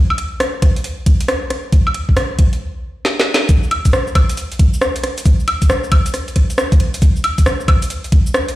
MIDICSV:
0, 0, Header, 1, 2, 480
1, 0, Start_track
1, 0, Tempo, 441176
1, 1877, Time_signature, 4, 2, 24, 8
1, 9308, End_track
2, 0, Start_track
2, 0, Title_t, "Drums"
2, 111, Note_on_c, 9, 76, 58
2, 196, Note_on_c, 9, 42, 107
2, 220, Note_off_c, 9, 76, 0
2, 305, Note_off_c, 9, 42, 0
2, 437, Note_on_c, 9, 37, 112
2, 437, Note_on_c, 9, 42, 68
2, 546, Note_off_c, 9, 37, 0
2, 546, Note_off_c, 9, 42, 0
2, 677, Note_on_c, 9, 36, 99
2, 677, Note_on_c, 9, 37, 50
2, 677, Note_on_c, 9, 42, 113
2, 786, Note_off_c, 9, 36, 0
2, 786, Note_off_c, 9, 37, 0
2, 786, Note_off_c, 9, 42, 0
2, 831, Note_on_c, 9, 42, 39
2, 916, Note_off_c, 9, 42, 0
2, 916, Note_on_c, 9, 42, 68
2, 1025, Note_off_c, 9, 42, 0
2, 1157, Note_on_c, 9, 36, 102
2, 1157, Note_on_c, 9, 42, 110
2, 1266, Note_off_c, 9, 36, 0
2, 1266, Note_off_c, 9, 42, 0
2, 1311, Note_on_c, 9, 42, 71
2, 1397, Note_off_c, 9, 42, 0
2, 1397, Note_on_c, 9, 37, 112
2, 1397, Note_on_c, 9, 42, 67
2, 1506, Note_off_c, 9, 37, 0
2, 1506, Note_off_c, 9, 42, 0
2, 1636, Note_on_c, 9, 37, 64
2, 1636, Note_on_c, 9, 42, 109
2, 1745, Note_off_c, 9, 37, 0
2, 1745, Note_off_c, 9, 42, 0
2, 1877, Note_on_c, 9, 36, 113
2, 1877, Note_on_c, 9, 42, 67
2, 1985, Note_off_c, 9, 42, 0
2, 1986, Note_off_c, 9, 36, 0
2, 2032, Note_on_c, 9, 76, 59
2, 2116, Note_on_c, 9, 42, 107
2, 2141, Note_off_c, 9, 76, 0
2, 2224, Note_off_c, 9, 42, 0
2, 2272, Note_on_c, 9, 36, 60
2, 2357, Note_on_c, 9, 37, 110
2, 2357, Note_on_c, 9, 42, 69
2, 2380, Note_off_c, 9, 36, 0
2, 2465, Note_off_c, 9, 37, 0
2, 2465, Note_off_c, 9, 42, 0
2, 2596, Note_on_c, 9, 42, 109
2, 2597, Note_on_c, 9, 36, 96
2, 2705, Note_off_c, 9, 42, 0
2, 2706, Note_off_c, 9, 36, 0
2, 2752, Note_on_c, 9, 42, 39
2, 2860, Note_off_c, 9, 42, 0
2, 3317, Note_on_c, 9, 38, 67
2, 3426, Note_off_c, 9, 38, 0
2, 3477, Note_on_c, 9, 38, 80
2, 3586, Note_off_c, 9, 38, 0
2, 3638, Note_on_c, 9, 38, 95
2, 3746, Note_off_c, 9, 38, 0
2, 3796, Note_on_c, 9, 42, 66
2, 3796, Note_on_c, 9, 82, 50
2, 3798, Note_on_c, 9, 36, 122
2, 3905, Note_off_c, 9, 42, 0
2, 3905, Note_off_c, 9, 82, 0
2, 3906, Note_off_c, 9, 36, 0
2, 3953, Note_on_c, 9, 82, 31
2, 4038, Note_on_c, 9, 42, 107
2, 4038, Note_on_c, 9, 76, 73
2, 4061, Note_off_c, 9, 82, 0
2, 4147, Note_off_c, 9, 42, 0
2, 4147, Note_off_c, 9, 76, 0
2, 4192, Note_on_c, 9, 42, 65
2, 4192, Note_on_c, 9, 82, 61
2, 4193, Note_on_c, 9, 36, 63
2, 4277, Note_off_c, 9, 82, 0
2, 4277, Note_on_c, 9, 37, 123
2, 4277, Note_on_c, 9, 82, 50
2, 4300, Note_off_c, 9, 42, 0
2, 4302, Note_off_c, 9, 36, 0
2, 4386, Note_off_c, 9, 37, 0
2, 4386, Note_off_c, 9, 82, 0
2, 4432, Note_on_c, 9, 82, 30
2, 4518, Note_on_c, 9, 36, 102
2, 4518, Note_on_c, 9, 37, 56
2, 4518, Note_on_c, 9, 42, 115
2, 4518, Note_on_c, 9, 76, 78
2, 4541, Note_off_c, 9, 82, 0
2, 4627, Note_off_c, 9, 36, 0
2, 4627, Note_off_c, 9, 37, 0
2, 4627, Note_off_c, 9, 42, 0
2, 4627, Note_off_c, 9, 76, 0
2, 4673, Note_on_c, 9, 42, 68
2, 4673, Note_on_c, 9, 82, 60
2, 4759, Note_off_c, 9, 42, 0
2, 4759, Note_off_c, 9, 82, 0
2, 4759, Note_on_c, 9, 42, 64
2, 4759, Note_on_c, 9, 82, 50
2, 4867, Note_off_c, 9, 42, 0
2, 4867, Note_off_c, 9, 82, 0
2, 4914, Note_on_c, 9, 42, 37
2, 4914, Note_on_c, 9, 82, 30
2, 4998, Note_on_c, 9, 36, 110
2, 4999, Note_off_c, 9, 42, 0
2, 4999, Note_on_c, 9, 42, 111
2, 5023, Note_off_c, 9, 82, 0
2, 5107, Note_off_c, 9, 36, 0
2, 5108, Note_off_c, 9, 42, 0
2, 5153, Note_on_c, 9, 82, 60
2, 5239, Note_off_c, 9, 82, 0
2, 5239, Note_on_c, 9, 37, 118
2, 5239, Note_on_c, 9, 82, 50
2, 5347, Note_off_c, 9, 37, 0
2, 5347, Note_off_c, 9, 82, 0
2, 5394, Note_on_c, 9, 42, 54
2, 5394, Note_on_c, 9, 82, 30
2, 5478, Note_off_c, 9, 42, 0
2, 5478, Note_on_c, 9, 37, 70
2, 5478, Note_on_c, 9, 42, 107
2, 5503, Note_off_c, 9, 82, 0
2, 5587, Note_off_c, 9, 37, 0
2, 5587, Note_off_c, 9, 42, 0
2, 5633, Note_on_c, 9, 42, 63
2, 5633, Note_on_c, 9, 82, 59
2, 5718, Note_off_c, 9, 42, 0
2, 5718, Note_off_c, 9, 82, 0
2, 5718, Note_on_c, 9, 36, 123
2, 5718, Note_on_c, 9, 42, 66
2, 5718, Note_on_c, 9, 82, 50
2, 5827, Note_off_c, 9, 36, 0
2, 5827, Note_off_c, 9, 42, 0
2, 5827, Note_off_c, 9, 82, 0
2, 5873, Note_on_c, 9, 82, 30
2, 5959, Note_on_c, 9, 42, 107
2, 5959, Note_on_c, 9, 76, 80
2, 5982, Note_off_c, 9, 82, 0
2, 6067, Note_off_c, 9, 42, 0
2, 6067, Note_off_c, 9, 76, 0
2, 6113, Note_on_c, 9, 36, 65
2, 6113, Note_on_c, 9, 42, 65
2, 6113, Note_on_c, 9, 82, 61
2, 6198, Note_off_c, 9, 82, 0
2, 6198, Note_on_c, 9, 37, 126
2, 6198, Note_on_c, 9, 82, 50
2, 6221, Note_off_c, 9, 36, 0
2, 6222, Note_off_c, 9, 42, 0
2, 6307, Note_off_c, 9, 37, 0
2, 6307, Note_off_c, 9, 82, 0
2, 6352, Note_on_c, 9, 82, 30
2, 6437, Note_on_c, 9, 42, 110
2, 6437, Note_on_c, 9, 76, 79
2, 6438, Note_on_c, 9, 36, 110
2, 6461, Note_off_c, 9, 82, 0
2, 6546, Note_off_c, 9, 42, 0
2, 6546, Note_off_c, 9, 76, 0
2, 6547, Note_off_c, 9, 36, 0
2, 6592, Note_on_c, 9, 42, 64
2, 6592, Note_on_c, 9, 82, 59
2, 6678, Note_off_c, 9, 42, 0
2, 6678, Note_off_c, 9, 82, 0
2, 6678, Note_on_c, 9, 37, 55
2, 6678, Note_on_c, 9, 42, 64
2, 6678, Note_on_c, 9, 82, 50
2, 6786, Note_off_c, 9, 37, 0
2, 6786, Note_off_c, 9, 42, 0
2, 6786, Note_off_c, 9, 82, 0
2, 6833, Note_on_c, 9, 42, 35
2, 6833, Note_on_c, 9, 82, 30
2, 6917, Note_off_c, 9, 42, 0
2, 6917, Note_on_c, 9, 37, 34
2, 6917, Note_on_c, 9, 42, 109
2, 6918, Note_on_c, 9, 36, 65
2, 6941, Note_off_c, 9, 82, 0
2, 7026, Note_off_c, 9, 36, 0
2, 7026, Note_off_c, 9, 37, 0
2, 7026, Note_off_c, 9, 42, 0
2, 7072, Note_on_c, 9, 42, 36
2, 7072, Note_on_c, 9, 82, 63
2, 7158, Note_off_c, 9, 82, 0
2, 7158, Note_on_c, 9, 37, 124
2, 7158, Note_on_c, 9, 82, 51
2, 7181, Note_off_c, 9, 42, 0
2, 7267, Note_off_c, 9, 37, 0
2, 7267, Note_off_c, 9, 82, 0
2, 7312, Note_on_c, 9, 36, 113
2, 7313, Note_on_c, 9, 42, 52
2, 7313, Note_on_c, 9, 82, 30
2, 7398, Note_off_c, 9, 42, 0
2, 7398, Note_on_c, 9, 42, 105
2, 7421, Note_off_c, 9, 36, 0
2, 7422, Note_off_c, 9, 82, 0
2, 7507, Note_off_c, 9, 42, 0
2, 7553, Note_on_c, 9, 42, 61
2, 7553, Note_on_c, 9, 82, 59
2, 7637, Note_off_c, 9, 42, 0
2, 7637, Note_off_c, 9, 82, 0
2, 7637, Note_on_c, 9, 36, 127
2, 7637, Note_on_c, 9, 42, 63
2, 7637, Note_on_c, 9, 82, 52
2, 7746, Note_off_c, 9, 36, 0
2, 7746, Note_off_c, 9, 42, 0
2, 7746, Note_off_c, 9, 82, 0
2, 7792, Note_on_c, 9, 82, 32
2, 7877, Note_on_c, 9, 42, 101
2, 7877, Note_on_c, 9, 76, 82
2, 7901, Note_off_c, 9, 82, 0
2, 7986, Note_off_c, 9, 42, 0
2, 7986, Note_off_c, 9, 76, 0
2, 8032, Note_on_c, 9, 36, 68
2, 8032, Note_on_c, 9, 42, 64
2, 8032, Note_on_c, 9, 82, 63
2, 8118, Note_off_c, 9, 82, 0
2, 8118, Note_on_c, 9, 37, 127
2, 8118, Note_on_c, 9, 82, 53
2, 8141, Note_off_c, 9, 36, 0
2, 8141, Note_off_c, 9, 42, 0
2, 8227, Note_off_c, 9, 37, 0
2, 8227, Note_off_c, 9, 82, 0
2, 8273, Note_on_c, 9, 82, 31
2, 8357, Note_on_c, 9, 36, 111
2, 8358, Note_on_c, 9, 37, 53
2, 8358, Note_on_c, 9, 42, 106
2, 8358, Note_on_c, 9, 76, 84
2, 8382, Note_off_c, 9, 82, 0
2, 8466, Note_off_c, 9, 36, 0
2, 8467, Note_off_c, 9, 37, 0
2, 8467, Note_off_c, 9, 42, 0
2, 8467, Note_off_c, 9, 76, 0
2, 8512, Note_on_c, 9, 42, 64
2, 8512, Note_on_c, 9, 82, 64
2, 8597, Note_off_c, 9, 42, 0
2, 8597, Note_off_c, 9, 82, 0
2, 8597, Note_on_c, 9, 42, 60
2, 8597, Note_on_c, 9, 82, 52
2, 8706, Note_off_c, 9, 42, 0
2, 8706, Note_off_c, 9, 82, 0
2, 8751, Note_on_c, 9, 42, 35
2, 8751, Note_on_c, 9, 82, 31
2, 8837, Note_off_c, 9, 42, 0
2, 8837, Note_on_c, 9, 36, 113
2, 8837, Note_on_c, 9, 42, 104
2, 8860, Note_off_c, 9, 82, 0
2, 8946, Note_off_c, 9, 36, 0
2, 8946, Note_off_c, 9, 42, 0
2, 8992, Note_on_c, 9, 82, 63
2, 9078, Note_off_c, 9, 82, 0
2, 9078, Note_on_c, 9, 37, 125
2, 9078, Note_on_c, 9, 82, 50
2, 9186, Note_off_c, 9, 37, 0
2, 9186, Note_off_c, 9, 82, 0
2, 9231, Note_on_c, 9, 42, 51
2, 9231, Note_on_c, 9, 82, 31
2, 9308, Note_off_c, 9, 42, 0
2, 9308, Note_off_c, 9, 82, 0
2, 9308, End_track
0, 0, End_of_file